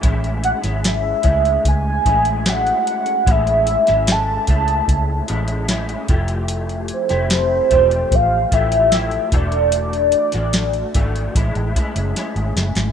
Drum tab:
HH |xxxxx-xxx-xxxxxx|xxxxx-xxx-xxxxxx|xxxxx-xxx-xxxxxx|xxxxxxxxxxxxxxxx|
SD |---oo-------o---|---oo-------o---|---oo-------o---|---oo-------o-oo|
BD |o-----o-o-o-----|o-----o-o-----o-|------o-o-o---o-|------o-o-o-----|